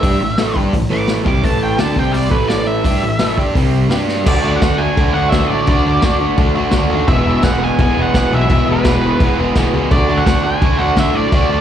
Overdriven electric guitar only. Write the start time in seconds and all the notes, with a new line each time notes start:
0.03 G3 D4 G4
0.21 A2 E3
0.38 A2 E3 A3
0.56 G3 D4 G4
0.73 A2 E3
0.89 A2 E3 A3
1.24 C3 G3 C4
1.43 A2 E3 A3
1.78 D3 A3 D4
1.97 C3 G3 C4
2.30 A2 E3 A3
2.85 G3 D4 G4
3.03 A2 E3
3.19 A2 E3 A3
3.37 G3 D4 G4
3.54 C3 G3 C4
3.89 G3 D4 G4
4.25 D3 A3 D4 F#4
4.41 D4 F#4
4.46 A3
4.60 D3 A3 D4
4.64 F#4
4.79 D4 F#4
4.83 A3
4.96 D3 A3 D4 F#4
5.14 D4 F#4
5.18 A3
5.31 D3 A3 D4 F#4
5.51 A3 D4 F#4
5.67 D3 A3 D4
5.71 F#4
5.85 A3 D4 F#4
6.01 D3 A3 D4
6.05 F#4
6.19 A3 D4 F#4
6.36 D3 A3 D4 F#4
6.55 A3 D4 F#4
6.73 D3 A3 D4
6.78 F#4
6.91 D4 F#4
6.95 A3
7.07 E2 B2 E3 G#3 B3 G#4
7.25 G#3 B3 G#4
7.30 E3
7.42 E2 B2 E3 G#3 B3 G#4
7.59 E3 G#3 B3 G#4
7.78 E3 G#3 B3 G#4
7.94 G#3 B3 G#4
7.99 E3
8.13 E2 B2 E3 G#3 B3
8.17 G#4
8.30 G#3 B3 G#4
8.35 E3
8.48 E2 B2 E3 G#3 B3 G#4
8.66 G#3 B3 G#4
8.70 E3
8.83 E2 B2 E3 G#3 B3
8.87 G#4
9.02 G#3 B3 G#4
9.07 E3
9.21 E3 G#3 B3 G#4
9.38 G#3 B3 G#4
9.42 E3
9.55 E2 B2 E3 G#3 B3
9.59 G#4
9.74 E3 G#3 B3 G#4
9.89 D3 A3 D4
9.94 F#4
10.09 A3 D4 F#4
10.26 D3 A3 D4
10.31 F#4
10.44 A3 D4 F#4
10.61 D3 A3 D4 F#4
10.80 A3 D4 F#4
10.96 D3 A3 D4 F#4
11.15 A3 D4 F#4
11.32 D3 A3 D4
11.36 F#4
11.51 D4 F#4
11.55 A3